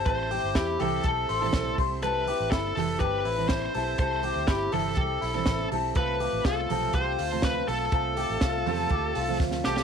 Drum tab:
HH |x-o-x-o-x-o-x-o-|x-o-x-o-x-o-x-o-|x-o-x-o-x-o-x-o-|x-o-x-o-x-o-x-o-|
SD |----o-------o---|----o-------o---|----o-------o---|----o-------o---|
BD |o---o---o---o-o-|----o---o---o---|o---o---o---o---|o---o---o---o---|

HH |x-o-x-o-x-o-----|
SD |----o-------oooo|
BD |o---o---o---o---|